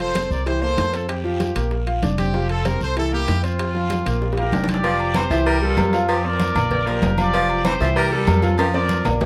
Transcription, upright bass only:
0, 0, Header, 1, 2, 480
1, 0, Start_track
1, 0, Key_signature, -1, "major"
1, 0, Tempo, 312175
1, 1679, Time_signature, 4, 2, 24, 8
1, 14234, End_track
2, 0, Start_track
2, 0, Title_t, "Upright bass"
2, 0, Program_c, 0, 32
2, 0, Note_on_c, 0, 29, 87
2, 392, Note_off_c, 0, 29, 0
2, 470, Note_on_c, 0, 36, 83
2, 1144, Note_off_c, 0, 36, 0
2, 1197, Note_on_c, 0, 41, 84
2, 2314, Note_off_c, 0, 41, 0
2, 2394, Note_on_c, 0, 34, 82
2, 3067, Note_off_c, 0, 34, 0
2, 3116, Note_on_c, 0, 29, 87
2, 4235, Note_off_c, 0, 29, 0
2, 4317, Note_on_c, 0, 36, 90
2, 4990, Note_off_c, 0, 36, 0
2, 5046, Note_on_c, 0, 41, 85
2, 6160, Note_off_c, 0, 41, 0
2, 6244, Note_on_c, 0, 34, 91
2, 6914, Note_off_c, 0, 34, 0
2, 6957, Note_on_c, 0, 29, 88
2, 8075, Note_off_c, 0, 29, 0
2, 8152, Note_on_c, 0, 36, 94
2, 8827, Note_off_c, 0, 36, 0
2, 8880, Note_on_c, 0, 41, 89
2, 9995, Note_off_c, 0, 41, 0
2, 10075, Note_on_c, 0, 34, 101
2, 10746, Note_off_c, 0, 34, 0
2, 10795, Note_on_c, 0, 29, 96
2, 11910, Note_off_c, 0, 29, 0
2, 11999, Note_on_c, 0, 36, 98
2, 12668, Note_off_c, 0, 36, 0
2, 12722, Note_on_c, 0, 41, 93
2, 13833, Note_off_c, 0, 41, 0
2, 13919, Note_on_c, 0, 34, 87
2, 14234, Note_off_c, 0, 34, 0
2, 14234, End_track
0, 0, End_of_file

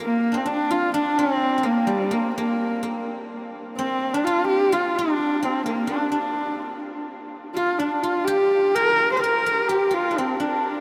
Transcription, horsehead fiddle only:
0, 0, Header, 1, 2, 480
1, 0, Start_track
1, 0, Time_signature, 4, 2, 24, 8
1, 0, Tempo, 472069
1, 10986, End_track
2, 0, Start_track
2, 0, Title_t, "Horsehead fiddle"
2, 0, Program_c, 0, 110
2, 29, Note_on_c, 0, 58, 103
2, 379, Note_on_c, 0, 60, 82
2, 394, Note_off_c, 0, 58, 0
2, 486, Note_on_c, 0, 62, 104
2, 501, Note_off_c, 0, 60, 0
2, 720, Note_on_c, 0, 65, 98
2, 735, Note_off_c, 0, 62, 0
2, 959, Note_off_c, 0, 65, 0
2, 968, Note_on_c, 0, 62, 100
2, 1199, Note_on_c, 0, 60, 111
2, 1215, Note_off_c, 0, 62, 0
2, 1684, Note_on_c, 0, 58, 95
2, 1699, Note_off_c, 0, 60, 0
2, 1900, Note_on_c, 0, 55, 99
2, 1915, Note_off_c, 0, 58, 0
2, 2171, Note_on_c, 0, 58, 92
2, 2186, Note_off_c, 0, 55, 0
2, 2385, Note_off_c, 0, 58, 0
2, 2391, Note_on_c, 0, 58, 88
2, 3073, Note_off_c, 0, 58, 0
2, 3839, Note_on_c, 0, 60, 100
2, 4205, Note_on_c, 0, 62, 88
2, 4221, Note_off_c, 0, 60, 0
2, 4311, Note_on_c, 0, 65, 110
2, 4326, Note_off_c, 0, 62, 0
2, 4546, Note_off_c, 0, 65, 0
2, 4552, Note_on_c, 0, 67, 110
2, 4803, Note_on_c, 0, 65, 98
2, 4818, Note_off_c, 0, 67, 0
2, 5044, Note_on_c, 0, 62, 97
2, 5059, Note_off_c, 0, 65, 0
2, 5538, Note_on_c, 0, 60, 86
2, 5553, Note_off_c, 0, 62, 0
2, 5756, Note_off_c, 0, 60, 0
2, 5763, Note_on_c, 0, 58, 91
2, 5982, Note_off_c, 0, 58, 0
2, 6001, Note_on_c, 0, 62, 85
2, 6222, Note_off_c, 0, 62, 0
2, 6229, Note_on_c, 0, 62, 83
2, 6911, Note_off_c, 0, 62, 0
2, 7671, Note_on_c, 0, 65, 100
2, 7914, Note_on_c, 0, 62, 85
2, 7930, Note_off_c, 0, 65, 0
2, 8160, Note_on_c, 0, 65, 99
2, 8175, Note_off_c, 0, 62, 0
2, 8379, Note_on_c, 0, 67, 111
2, 8394, Note_off_c, 0, 65, 0
2, 8898, Note_on_c, 0, 70, 117
2, 8913, Note_off_c, 0, 67, 0
2, 9267, Note_off_c, 0, 70, 0
2, 9273, Note_on_c, 0, 72, 77
2, 9346, Note_on_c, 0, 70, 102
2, 9361, Note_off_c, 0, 72, 0
2, 9844, Note_on_c, 0, 67, 96
2, 9859, Note_off_c, 0, 70, 0
2, 10106, Note_on_c, 0, 65, 99
2, 10121, Note_off_c, 0, 67, 0
2, 10352, Note_on_c, 0, 60, 86
2, 10367, Note_off_c, 0, 65, 0
2, 10569, Note_off_c, 0, 60, 0
2, 10575, Note_on_c, 0, 62, 77
2, 10986, Note_off_c, 0, 62, 0
2, 10986, End_track
0, 0, End_of_file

